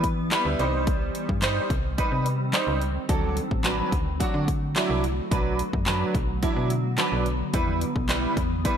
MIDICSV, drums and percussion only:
0, 0, Header, 1, 2, 480
1, 0, Start_track
1, 0, Tempo, 555556
1, 753, Time_signature, 4, 2, 24, 8
1, 7580, End_track
2, 0, Start_track
2, 0, Title_t, "Drums"
2, 32, Note_on_c, 9, 36, 87
2, 32, Note_on_c, 9, 42, 88
2, 118, Note_off_c, 9, 42, 0
2, 119, Note_off_c, 9, 36, 0
2, 270, Note_on_c, 9, 38, 89
2, 273, Note_on_c, 9, 42, 82
2, 274, Note_on_c, 9, 39, 113
2, 356, Note_off_c, 9, 38, 0
2, 360, Note_off_c, 9, 39, 0
2, 360, Note_off_c, 9, 42, 0
2, 513, Note_on_c, 9, 42, 68
2, 600, Note_off_c, 9, 42, 0
2, 752, Note_on_c, 9, 42, 89
2, 753, Note_on_c, 9, 36, 125
2, 838, Note_off_c, 9, 42, 0
2, 840, Note_off_c, 9, 36, 0
2, 992, Note_on_c, 9, 42, 88
2, 1079, Note_off_c, 9, 42, 0
2, 1115, Note_on_c, 9, 36, 84
2, 1202, Note_off_c, 9, 36, 0
2, 1226, Note_on_c, 9, 38, 96
2, 1230, Note_on_c, 9, 39, 114
2, 1230, Note_on_c, 9, 42, 91
2, 1312, Note_off_c, 9, 38, 0
2, 1316, Note_off_c, 9, 39, 0
2, 1317, Note_off_c, 9, 42, 0
2, 1470, Note_on_c, 9, 36, 96
2, 1471, Note_on_c, 9, 42, 63
2, 1557, Note_off_c, 9, 36, 0
2, 1557, Note_off_c, 9, 42, 0
2, 1713, Note_on_c, 9, 42, 98
2, 1714, Note_on_c, 9, 36, 90
2, 1799, Note_off_c, 9, 42, 0
2, 1800, Note_off_c, 9, 36, 0
2, 1951, Note_on_c, 9, 42, 87
2, 2037, Note_off_c, 9, 42, 0
2, 2188, Note_on_c, 9, 38, 94
2, 2191, Note_on_c, 9, 42, 84
2, 2192, Note_on_c, 9, 39, 116
2, 2274, Note_off_c, 9, 38, 0
2, 2278, Note_off_c, 9, 39, 0
2, 2278, Note_off_c, 9, 42, 0
2, 2432, Note_on_c, 9, 42, 69
2, 2518, Note_off_c, 9, 42, 0
2, 2670, Note_on_c, 9, 42, 88
2, 2672, Note_on_c, 9, 36, 120
2, 2757, Note_off_c, 9, 42, 0
2, 2758, Note_off_c, 9, 36, 0
2, 2910, Note_on_c, 9, 42, 88
2, 2996, Note_off_c, 9, 42, 0
2, 3034, Note_on_c, 9, 36, 82
2, 3120, Note_off_c, 9, 36, 0
2, 3145, Note_on_c, 9, 38, 92
2, 3150, Note_on_c, 9, 39, 114
2, 3150, Note_on_c, 9, 42, 89
2, 3232, Note_off_c, 9, 38, 0
2, 3236, Note_off_c, 9, 39, 0
2, 3236, Note_off_c, 9, 42, 0
2, 3390, Note_on_c, 9, 36, 98
2, 3391, Note_on_c, 9, 42, 65
2, 3476, Note_off_c, 9, 36, 0
2, 3478, Note_off_c, 9, 42, 0
2, 3632, Note_on_c, 9, 42, 95
2, 3633, Note_on_c, 9, 36, 91
2, 3719, Note_off_c, 9, 42, 0
2, 3720, Note_off_c, 9, 36, 0
2, 3871, Note_on_c, 9, 36, 88
2, 3871, Note_on_c, 9, 42, 90
2, 3957, Note_off_c, 9, 36, 0
2, 3958, Note_off_c, 9, 42, 0
2, 4111, Note_on_c, 9, 38, 90
2, 4114, Note_on_c, 9, 42, 87
2, 4115, Note_on_c, 9, 39, 113
2, 4197, Note_off_c, 9, 38, 0
2, 4201, Note_off_c, 9, 39, 0
2, 4201, Note_off_c, 9, 42, 0
2, 4354, Note_on_c, 9, 42, 70
2, 4440, Note_off_c, 9, 42, 0
2, 4592, Note_on_c, 9, 36, 121
2, 4593, Note_on_c, 9, 42, 86
2, 4679, Note_off_c, 9, 36, 0
2, 4679, Note_off_c, 9, 42, 0
2, 4832, Note_on_c, 9, 42, 90
2, 4918, Note_off_c, 9, 42, 0
2, 4954, Note_on_c, 9, 36, 83
2, 5040, Note_off_c, 9, 36, 0
2, 5065, Note_on_c, 9, 38, 94
2, 5069, Note_on_c, 9, 39, 118
2, 5069, Note_on_c, 9, 42, 91
2, 5151, Note_off_c, 9, 38, 0
2, 5155, Note_off_c, 9, 39, 0
2, 5156, Note_off_c, 9, 42, 0
2, 5310, Note_on_c, 9, 36, 98
2, 5311, Note_on_c, 9, 42, 64
2, 5396, Note_off_c, 9, 36, 0
2, 5398, Note_off_c, 9, 42, 0
2, 5552, Note_on_c, 9, 42, 95
2, 5553, Note_on_c, 9, 36, 93
2, 5638, Note_off_c, 9, 42, 0
2, 5640, Note_off_c, 9, 36, 0
2, 5791, Note_on_c, 9, 42, 90
2, 5877, Note_off_c, 9, 42, 0
2, 6028, Note_on_c, 9, 38, 88
2, 6032, Note_on_c, 9, 39, 115
2, 6032, Note_on_c, 9, 42, 85
2, 6115, Note_off_c, 9, 38, 0
2, 6118, Note_off_c, 9, 42, 0
2, 6119, Note_off_c, 9, 39, 0
2, 6272, Note_on_c, 9, 42, 69
2, 6359, Note_off_c, 9, 42, 0
2, 6511, Note_on_c, 9, 42, 86
2, 6512, Note_on_c, 9, 36, 120
2, 6597, Note_off_c, 9, 42, 0
2, 6599, Note_off_c, 9, 36, 0
2, 6751, Note_on_c, 9, 42, 90
2, 6838, Note_off_c, 9, 42, 0
2, 6875, Note_on_c, 9, 36, 82
2, 6961, Note_off_c, 9, 36, 0
2, 6988, Note_on_c, 9, 38, 99
2, 6992, Note_on_c, 9, 39, 115
2, 6992, Note_on_c, 9, 42, 90
2, 7074, Note_off_c, 9, 38, 0
2, 7078, Note_off_c, 9, 39, 0
2, 7079, Note_off_c, 9, 42, 0
2, 7230, Note_on_c, 9, 36, 90
2, 7231, Note_on_c, 9, 42, 64
2, 7317, Note_off_c, 9, 36, 0
2, 7318, Note_off_c, 9, 42, 0
2, 7473, Note_on_c, 9, 42, 96
2, 7474, Note_on_c, 9, 36, 92
2, 7559, Note_off_c, 9, 42, 0
2, 7560, Note_off_c, 9, 36, 0
2, 7580, End_track
0, 0, End_of_file